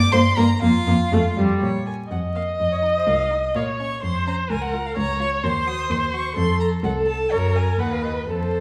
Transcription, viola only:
0.13 0.21 A#3 medium
0.37 0.45 A#3 medium
0.62 0.70 A#3 medium
0.87 0.95 A#3 medium
1.13 1.21 A3 medium
1.38 1.62 G3 medium
2.12 3.57 D#5 medium
3.56 4.03 C#5 soft
4.03 4.52 C5 medium
4.50 4.97 A#4 soft
4.97 5.45 C#5 medium
5.44 6.36 C5 medium
6.37 6.83 A4 medium
6.84 7.33 A4 medium
7.32 7.81 A#4 medium
7.79 8.29 B4 soft
8.30 8.60 A4 soft

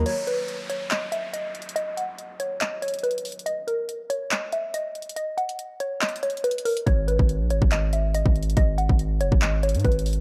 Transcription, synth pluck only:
0.06 0.22 C#5 loud
0.27 0.67 B4 medium
0.70 0.86 C#5 medium
0.91 1.07 D#5 medium
1.12 1.28 E5 medium
1.33 1.73 D#5 medium
1.76 1.92 D#5 loud
1.97 2.37 F#5 medium
2.40 2.56 C#5 medium
2.61 2.77 D#5 medium
2.82 2.98 C#5 medium
3.03 3.44 B4 medium
3.46 3.62 D#5 loud
3.67 4.08 A#4 medium
4.10 4.26 C#5 medium
4.31 4.47 D#5 medium
4.53 4.69 E5 medium
4.74 5.14 D#5 medium
5.16 5.32 D#5 medium
5.37 5.78 F#5 medium
5.80 5.96 C#5 medium
6.01 6.17 D#5 medium
6.23 6.39 C#5 medium
6.44 6.60 B4 medium
6.65 6.81 A#4 medium
6.86 7.03 C#5 loud
7.08 7.48 B4 medium
7.51 7.67 C#5 medium
7.72 7.88 D#5 medium
7.93 8.09 E5 medium
8.15 8.54 D#5 medium
8.57 8.73 D#5 loud
8.78 9.18 F#5 medium
9.21 9.37 C#5 medium
9.42 9.58 D#5 medium
9.63 9.79 C#5 medium
9.85 10.21 B4 medium

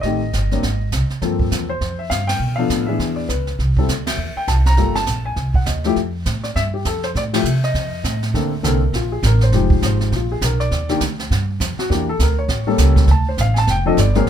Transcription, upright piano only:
0.01 0.20 D#3 medium
0.01 0.20 A3 soft
0.01 0.20 C4 soft
0.01 1.05 D#5 medium
0.05 0.20 G4 medium
0.52 0.62 F#3 medium
0.52 0.62 A#3 soft
0.52 0.62 C4 medium
0.52 0.62 D4 medium
1.22 1.65 F3 medium
1.22 1.65 A#3 soft
1.22 1.66 C4 medium
1.22 1.66 A4 medium
1.69 2.00 C5 medium
1.99 2.09 E5 medium
2.10 2.28 F5 medium
2.27 2.55 G5 medium
2.56 2.86 F3 medium
2.56 2.86 B3 medium
2.56 2.86 D4 medium
2.56 2.86 A4 medium
2.56 2.84 F5 medium
2.86 3.27 E3 medium
2.86 3.27 B3 soft
2.86 3.27 D4 medium
2.86 3.27 G#4 medium
2.86 3.17 E5 medium
3.16 3.27 D5 medium
3.29 3.51 B4 medium
3.78 3.88 G3 medium
3.78 3.88 C4 medium
3.78 3.88 E4 medium
3.78 3.88 A4 medium
4.06 4.37 E5 medium
4.37 4.47 G5 medium
4.48 4.53 A5 medium
4.67 4.94 A#5 loud
4.78 4.94 G3 medium
4.78 4.93 A#3 soft
4.78 4.94 F4 soft
4.78 4.94 A4 medium
4.96 5.26 A5 loud
5.26 5.53 G#5 medium
5.55 5.66 F#5 medium
5.67 5.88 D#5 medium
5.85 5.95 F3 medium
5.85 5.95 A3 medium
5.85 5.96 E4 medium
5.85 5.96 G4 medium
6.44 6.49 D5 medium
6.56 6.61 E5 loud
6.74 6.86 G4 medium
6.86 7.04 A4 medium
7.04 7.09 C5 medium
7.17 7.22 D5 medium
7.33 7.43 F3 medium
7.33 7.44 A3 medium
7.33 7.44 E4 medium
7.33 7.44 G4 medium
7.33 7.64 E5 medium
7.64 8.19 D#5 medium
8.34 8.50 D3 medium
8.34 8.50 A#3 medium
8.34 8.50 C4 medium
8.34 8.50 A4 medium
8.63 8.80 D3 medium
8.63 8.79 A#3 medium
8.63 8.80 C4 medium
8.63 8.80 A4 medium
8.67 8.93 A#4 medium
8.95 9.12 F4 soft
9.12 9.23 G#4 medium
9.26 9.42 A#4 medium
9.43 9.81 C5 medium
9.53 10.12 F3 medium
9.53 10.12 G#3 soft
9.53 10.12 D#4 soft
9.53 10.13 G4 medium
9.85 10.12 C5 medium
10.16 10.31 F4 soft
10.32 10.42 G#4 medium
10.44 10.60 A#4 medium
10.60 10.98 D5 medium
10.89 11.00 D#3 medium
10.89 11.00 A#3 medium
10.89 11.00 D4 medium
10.89 11.00 G4 medium
11.79 11.90 F#4 medium
11.90 12.06 E3 medium
11.90 12.06 A#3 medium
11.90 12.06 D4 soft
11.90 12.06 G4 medium
12.09 12.20 A4 medium
12.22 12.38 A#4 medium
12.39 12.66 C#5 medium
12.67 13.06 G3 medium
12.67 13.06 A#3 medium
12.67 13.06 C#4 medium
12.67 13.06 A4 medium
13.11 13.27 A5 medium
13.29 13.39 C5 medium
13.41 13.57 F5 medium
13.58 13.68 A5 medium
13.70 13.86 G5 medium
13.86 13.96 F3 medium
13.86 13.96 C4 medium
13.86 13.96 D4 medium
13.86 13.96 A4 medium
13.86 13.98 D#5 medium
14.00 14.16 D5 medium
14.15 14.26 F#3 medium
14.15 14.26 A#3 medium
14.15 14.26 C4 medium
14.15 14.26 G#4 medium
14.15 14.29 A#4 medium

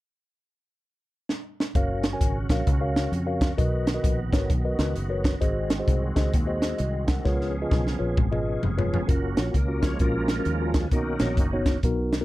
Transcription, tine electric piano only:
1.75 2.05 F#4 medium
1.75 2.05 A#4 medium
1.75 2.05 C#5 medium
1.75 2.05 F5 medium
2.13 2.36 F#4 medium
2.13 2.37 A#4 medium
2.13 2.37 C#5 medium
2.13 2.37 G#5 medium
2.51 2.69 F#4 medium
2.51 2.69 A#4 medium
2.51 2.69 C#5 medium
2.51 2.68 F5 medium
2.81 3.10 F#4 medium
2.81 3.11 A#4 medium
2.81 3.10 C#5 medium
2.81 3.11 F5 medium
3.26 3.50 F#4 medium
3.26 3.50 A#4 medium
3.26 3.50 C#5 medium
3.26 3.50 F5 medium
3.58 4.29 B2 medium
3.58 3.87 F#4 medium
3.58 3.87 A#4 medium
3.58 3.88 B4 medium
3.58 3.88 D#5 medium
3.94 4.19 F#4 medium
3.94 4.19 A#4 medium
3.94 4.19 B4 medium
3.94 4.19 D#5 medium
4.33 4.51 F#4 medium
4.33 4.51 A#4 medium
4.33 4.51 B4 medium
4.33 4.51 C#5 medium
4.65 4.94 F#4 medium
4.65 4.94 A#4 medium
4.65 4.94 B4 medium
4.65 4.94 D#5 medium
5.09 5.34 F#4 medium
5.09 5.33 A#4 medium
5.09 5.34 B4 medium
5.09 5.34 C#5 medium
5.41 6.12 G#2 medium
5.41 5.71 F#4 medium
5.41 5.71 G#4 medium
5.41 5.71 C5 medium
5.41 5.71 D#5 medium
5.79 6.03 F#4 medium
5.79 6.03 G#4 medium
5.79 6.03 C5 medium
5.79 6.03 D#5 medium
6.16 6.34 F#4 medium
6.16 6.34 G#4 medium
6.16 6.34 C5 medium
6.16 6.34 D#5 medium
6.46 6.76 F#4 medium
6.46 6.76 G#4 medium
6.46 6.77 C5 medium
6.46 6.77 D#5 medium
6.78 7.06 F#4 soft
6.78 7.06 D#5 medium
7.07 7.52 A#4 soft
7.07 7.51 F#5 medium
7.25 7.96 C#3 medium
7.25 7.54 F4 medium
7.25 7.54 G#4 medium
7.25 7.54 B4 medium
7.25 7.54 C#5 medium
7.62 7.86 F4 medium
7.62 7.86 G#4 medium
7.62 7.86 B4 medium
7.62 7.86 D#5 medium
7.99 8.17 F4 medium
7.99 8.17 G#4 medium
7.99 8.17 B4 medium
7.99 8.17 C#5 medium
8.31 8.60 F4 medium
8.31 8.61 G#4 medium
8.31 8.61 B4 medium
8.31 8.61 D#5 medium
8.77 9.01 F4 medium
8.77 9.01 G#4 medium
8.77 9.01 B4 medium
8.77 9.01 C#5 medium
9.07 9.28 C#4 medium
9.07 9.28 F4 medium
9.07 9.27 F#4 medium
9.07 9.28 A#4 medium
9.37 9.55 C#4 medium
9.37 9.55 F4 medium
9.37 9.55 F#4 medium
9.37 9.55 C#5 medium
9.68 9.92 C#4 medium
9.68 9.92 F4 medium
9.68 9.92 F#4 medium
9.68 9.92 A#4 medium
10.01 10.29 C#4 medium
10.01 10.30 F4 medium
10.01 10.30 F#4 medium
10.01 10.30 A#4 medium
10.38 10.52 C#4 medium
10.38 10.51 F4 medium
10.38 10.52 F#4 medium
10.38 10.52 A#4 medium
10.61 10.84 C#4 medium
10.61 10.84 F4 medium
10.61 10.84 F#4 medium
10.61 10.84 A#4 medium
10.92 11.63 B2 medium
10.92 11.12 B3 medium
10.92 11.12 D#4 medium
10.92 11.12 F#4 medium
10.92 11.12 A#4 medium
11.21 11.38 B3 medium
11.21 11.39 D#4 medium
11.21 11.38 F#4 medium
11.21 11.39 C#5 medium
11.53 11.76 B3 medium
11.53 11.76 D#4 medium
11.53 11.76 F#4 medium
11.53 11.76 C#5 loud
11.84 12.13 B3 medium
11.84 12.13 D#4 medium
11.84 12.13 F#4 medium
11.84 12.13 A#4 loud
12.21 12.25 B3 medium
12.21 12.25 D#4 medium
12.21 12.25 F#4 medium
12.21 12.25 A#4 loud

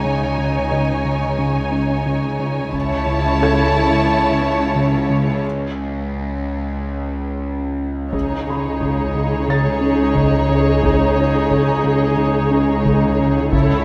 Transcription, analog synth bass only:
0.05 0.25 C#3 medium
0.38 0.59 C#3 soft
0.71 0.92 C#3 soft
1.05 1.25 C#3 medium
1.39 1.59 C#3 medium
1.72 1.92 C#4 soft
2.06 2.27 C#3 medium
2.40 2.60 C#3 medium
2.73 2.93 C#3 medium
3.06 3.27 C#3 medium
3.41 3.61 C#3 medium
3.75 3.95 C#3 medium
4.09 4.29 C#3 medium
4.42 4.63 C#4 medium
4.76 4.96 C#3 medium
5.10 5.30 C#3 medium
8.14 8.34 C#3 medium
8.47 8.68 C#3 soft
8.81 9.01 C#3 soft
9.14 9.35 C#3 medium
9.48 9.68 C#3 medium
9.81 10.01 C#4 medium
10.15 10.35 C#3 medium
10.50 10.70 C#3 medium
10.83 11.03 C#3 medium
11.16 11.37 C#3 medium
11.50 11.70 C#3 medium
11.84 12.04 C#3 medium
12.17 12.38 C#3 medium
12.51 12.71 C#4 medium
12.85 13.05 C#3 medium
13.19 13.39 C#3 medium
13.53 13.73 C#3 medium

